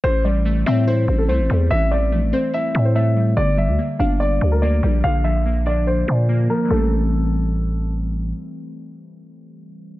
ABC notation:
X:1
M:4/4
L:1/16
Q:1/4=144
K:Aphr
V:1 name="Grand piano"
c2 d4 e2 c3 A c4 | e2 d4 c2 e3 c e4 | d2 e4 f2 d3 B d4 | f2 e4 d2 c6 B2 |
A12 z4 | z16 |]
V:2 name="Synth keys"
E,2 G,2 A,2 C2 E4 A,2 G,2 | E,2 G,2 A,2 C2 E4 A,2 G,2 | D,2 G,2 B,2 D2 d4 B,2 G,2 | D,2 F,2 B,2 D2 d4 B,2 F,2 |
[E,G,A,C]16- | [E,G,A,C]16 |]
V:3 name="808-style bass" clef=bass
A,,,6 A,,4 A,,,2 C,, A,,, E,,2 | A,,,4 B,,, A,,, z4 A,,6 | G,,,3 D,, z2 G,,,4 D,,4 B,,,2 | B,,,8- B,,,2 B,,4 z2 |
A,,,16 | z16 |]